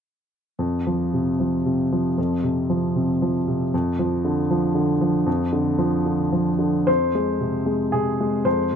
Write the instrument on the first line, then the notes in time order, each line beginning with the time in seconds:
grand piano
0.59 F2
0.87 F3
1.13 C3
1.40 F3
1.65 C3
1.92 F3
2.18 F2
2.44 C3
2.70 F3
2.96 C3
3.22 F3
3.48 C3
3.74 F2
3.99 F3
4.25 D3
4.51 F3
4.75 D3
5.01 F3
5.26 F2
5.53 D3
5.78 F3
6.06 D3
6.32 F3
6.59 D3
6.87 F2 C5
7.15 G#3
7.40 C3
7.66 G#3
7.92 C3 G#4
8.20 G#3
8.45 F2 C5